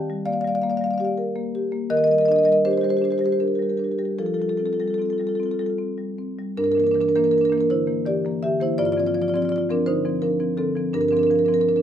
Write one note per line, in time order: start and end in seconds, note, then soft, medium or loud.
0.00 1.86 D#3 medium
0.00 0.21 G4 soft
0.00 0.25 D5 medium
0.00 0.26 G5 medium
0.10 0.39 G3 medium
0.26 0.56 A#3 medium
0.26 0.32 D5 medium
0.26 0.34 F5 medium
0.32 0.41 D5 soft
0.32 0.41 F5 medium
0.41 0.74 G3 medium
0.41 0.49 D5 medium
0.41 0.47 F5 medium
0.47 0.55 D5 soft
0.47 0.55 F5 medium
0.55 0.63 D5 medium
0.55 0.62 F5 medium
0.62 0.93 A#3 medium
0.62 0.71 D5 soft
0.62 0.70 F5 medium
0.70 0.78 D5 medium
0.70 0.77 F5 medium
0.77 0.86 D5 soft
0.77 0.84 F5 medium
0.81 1.11 G3 medium
0.81 0.91 F5 medium
0.86 0.94 D5 medium
0.91 1.01 D5 medium
0.91 0.98 F5 medium
0.98 1.29 G4 medium
0.98 1.07 D5 medium
0.98 1.05 F5 medium
1.05 1.13 D5 soft
1.05 1.13 F5 medium
1.18 1.47 A#4 medium
1.36 1.65 A#3 medium
1.55 1.84 G4 medium
1.72 1.91 A#3 medium
1.90 4.14 D#3 medium
1.90 1.99 A#4 medium
1.90 1.97 D#5 medium
1.97 2.07 A#4 medium
1.97 2.04 D#5 medium
2.04 2.13 A#4 medium
2.04 2.11 D#5 medium
2.09 2.38 G3 soft
2.09 2.18 D#5 medium
2.13 2.21 A#4 medium
2.18 2.28 A#4 medium
2.18 2.26 D#5 medium
2.26 2.58 D4 medium
2.26 2.36 A#4 medium
2.26 2.32 D#5 medium
2.32 2.38 D#5 medium
2.36 2.44 A#4 medium
2.36 2.45 D#5 medium
2.44 2.76 G3 medium
2.44 2.52 A#4 medium
2.44 2.53 D#5 medium
2.52 2.61 A#4 medium
2.52 2.62 D#5 medium
2.65 2.95 D4 soft
2.65 2.73 G4 medium
2.65 2.71 C5 medium
2.71 2.81 G4 soft
2.71 2.78 C5 medium
2.78 2.89 G4 medium
2.78 2.84 C5 medium
2.83 3.14 G3 medium
2.83 2.90 C5 medium
2.89 2.97 G4 medium
2.89 2.98 C5 medium
2.97 3.04 G4 medium
2.97 3.05 C5 medium
3.02 3.32 D4 soft
3.02 3.11 G4 medium
3.02 3.12 C5 medium
3.11 3.18 G4 medium
3.11 3.19 C5 medium
3.18 3.52 G3 soft
3.18 3.24 G4 medium
3.18 3.26 C5 medium
3.24 3.32 G4 medium
3.24 3.32 C5 medium
3.32 3.36 G4 soft
3.32 3.37 C5 medium
3.40 3.71 D4 soft
3.40 3.48 G4 soft
3.40 3.48 A#4 medium
3.48 3.55 G4 soft
3.48 3.55 A#4 soft
3.55 3.63 G4 soft
3.55 3.62 A#4 soft
3.59 3.90 G3 soft
3.59 3.70 A#4 soft
3.63 3.71 G4 soft
3.70 3.77 G4 soft
3.70 3.77 A#4 soft
3.77 4.10 D4 soft
3.77 3.84 G4 soft
3.77 3.84 A#4 soft
3.84 3.91 G4 soft
3.84 3.92 A#4 soft
3.91 3.98 G4 soft
3.91 3.99 A#4 soft
3.98 4.18 G3 soft
3.98 4.05 G4 soft
3.98 4.05 A#4 soft
4.05 4.14 G4 soft
4.05 4.15 A#4 soft
4.19 6.54 F3 medium
4.19 4.25 F4 soft
4.19 4.26 A4 medium
4.25 4.34 F4 soft
4.25 4.34 A4 medium
4.34 4.42 F4 soft
4.34 4.42 A4 medium
4.40 4.71 G3 soft
4.40 4.50 F4 soft
4.40 4.49 A4 medium
4.49 4.58 F4 soft
4.49 4.57 A4 medium
4.57 4.91 C4 soft
4.57 4.67 F4 soft
4.57 4.66 A4 medium
4.66 4.74 F4 soft
4.66 4.73 A4 medium
4.73 4.82 F4 soft
4.73 4.80 A4 medium
4.80 5.12 G3 soft
4.80 4.90 F4 soft
4.80 4.88 A4 medium
4.88 4.98 F4 soft
4.88 4.94 A4 medium
4.94 5.05 F4 soft
4.94 5.02 A4 medium
4.99 5.31 C4 soft
4.99 5.10 A4 medium
5.05 5.13 F4 soft
5.10 5.21 F4 soft
5.10 5.18 A4 medium
5.18 5.51 G3 soft
5.18 5.29 F4 soft
5.18 5.27 A4 medium
5.27 5.37 F4 soft
5.27 5.35 A4 medium
5.35 5.46 F4 soft
5.35 5.43 A4 medium
5.40 5.71 C4 soft
5.40 5.51 A4 medium
5.46 5.54 F4 soft
5.51 5.61 F4 soft
5.51 5.59 A4 medium
5.59 5.90 G3 soft
5.59 5.70 F4 soft
5.59 5.66 A4 medium
5.66 5.75 F4 soft
5.66 5.74 A4 medium
5.78 6.10 C4 soft
5.98 6.30 G3 soft
6.18 6.50 C4 soft
6.39 6.58 G3 soft
6.57 6.76 G2 medium
6.57 6.66 D4 medium
6.57 6.64 A#4 medium
6.64 6.75 D4 soft
6.64 6.72 A#4 medium
6.72 6.84 D4 medium
6.72 6.80 A#4 medium
6.77 6.93 E3 soft
6.77 6.94 A#3 soft
6.77 6.87 A#4 medium
6.84 6.91 D4 soft
6.84 6.94 A#4 medium
6.91 7.00 D4 medium
6.91 7.01 A#4 medium
6.96 7.14 E3 soft
7.00 7.08 D4 medium
7.00 7.09 A#4 medium
7.08 7.16 D4 medium
7.08 7.16 A#4 medium
7.15 7.48 E3 medium
7.15 7.48 A#3 medium
7.15 7.25 D4 medium
7.15 7.24 A#4 medium
7.24 7.33 D4 medium
7.24 7.31 A#4 medium
7.31 7.41 D4 soft
7.31 7.38 A#4 medium
7.38 7.49 D4 medium
7.38 7.45 A#4 medium
7.45 7.53 A#4 medium
7.49 7.67 E3 medium
7.49 7.68 A#3 medium
7.49 7.58 D4 soft
7.49 7.60 A#4 medium
7.58 7.64 D4 medium
7.58 7.64 A#4 medium
7.70 7.98 D3 soft
7.70 8.03 E4 medium
7.70 8.04 C5 medium
7.87 8.03 E3 soft
7.87 8.03 A#3 medium
8.06 8.24 E3 medium
8.06 8.40 G4 medium
8.06 8.41 D5 medium
8.25 8.40 E3 soft
8.25 8.41 A#3 medium
8.43 8.71 D3 soft
8.43 8.60 G4 medium
8.43 8.60 E5 medium
8.60 8.76 E3 soft
8.60 8.77 A#3 medium
8.60 8.78 E4 medium
8.60 8.79 C5 medium
8.78 8.96 G2 medium
8.78 8.86 F4 medium
8.78 8.85 D5 medium
8.85 8.93 F4 medium
8.85 8.92 D5 medium
8.92 9.00 F4 medium
8.92 9.00 D5 medium
8.97 9.13 F3 soft
8.97 9.13 C4 medium
8.97 9.07 F4 medium
8.97 9.07 D5 medium
9.07 9.14 F4 medium
9.07 9.15 D5 medium
9.14 9.33 F3 medium
9.14 9.22 F4 medium
9.14 9.22 D5 medium
9.22 9.29 F4 medium
9.22 9.28 D5 medium
9.28 9.37 F4 medium
9.28 9.36 D5 medium
9.34 9.65 F3 medium
9.34 9.65 C4 medium
9.34 9.45 F4 medium
9.34 9.42 D5 medium
9.42 9.52 F4 medium
9.42 9.49 D5 medium
9.49 9.58 F4 medium
9.49 9.56 D5 medium
9.56 9.64 F4 medium
9.56 9.64 D5 medium
9.70 9.85 F3 medium
9.70 9.85 C4 medium
9.70 9.87 D4 medium
9.70 9.87 A#4 medium
9.86 10.15 D3 medium
9.86 10.20 D#4 medium
9.86 10.20 C5 medium
10.05 10.20 F3 soft
10.05 10.21 C4 medium
10.22 10.38 F3 medium
10.22 10.56 D4 medium
10.22 10.56 A#4 medium
10.40 10.56 F3 medium
10.40 10.56 C4 medium
10.57 10.86 D3 soft
10.57 10.75 C4 medium
10.57 10.92 A4 medium
10.76 10.92 F3 medium
10.76 10.92 C4 medium
10.93 11.11 G2 medium
10.93 11.02 D4 medium
10.93 11.01 A#4 medium
11.01 11.10 D4 soft
11.01 11.08 A#4 medium
11.08 11.28 F3 soft
11.08 11.19 D4 medium
11.08 11.17 A#4 medium
11.13 11.29 C4 soft
11.17 11.27 D4 medium
11.17 11.23 A#4 medium
11.23 11.36 D4 medium
11.23 11.31 A#4 medium
11.30 11.47 F3 medium
11.30 11.39 A#4 medium
11.36 11.45 D4 soft
11.36 11.46 A#4 medium
11.45 11.80 F3 medium
11.45 11.80 C4 medium
11.45 11.53 D4 medium
11.45 11.54 A#4 medium
11.53 11.61 D4 soft
11.53 11.61 A#4 medium
11.61 11.68 D4 medium
11.61 11.69 A#4 medium
11.68 11.77 D4 soft
11.68 11.76 A#4 medium
11.76 11.82 D4 medium
11.76 11.82 A#4 medium